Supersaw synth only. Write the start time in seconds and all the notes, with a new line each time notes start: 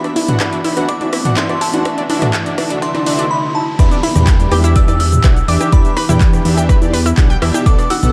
0.28 E3 D4 F#4 F#5
0.40 E3 D4 F#4 E5
0.77 E3 D4 F#4 F#5
0.89 E3 D4 F#4 E5
1.25 E3 D4 F#4 F#5
1.37 E3 D4 F#4 E5
1.74 E3 D4 F#4 F#5
1.85 E3 D4 F#4 E5
2.10 E3 D4 F#4 E5
2.34 E3 E5
2.58 E3 D4 F#4 E5
2.82 E3 D4 E5
3.06 E3 D4 F#4 E5
3.79 E3 D4 G4 E5
4.16 E3 D4 G4 G5
4.52 E3 D4 G4 E5
4.88 E3 D4 G4 D5
5.24 E3 D4 G4 F#5
5.48 E3 D4 G4 E5
5.72 E3 D4 G4 E5
6.09 E3 D4 G4 G5
6.45 E3 D4 G4 E5
6.82 E3 D4 G4 D5
7.18 E3 D4 G4 F#5
7.42 B2 D4 G4 E5
7.66 B2 B3 A4 D5
8.03 B2 B3 A4 F#5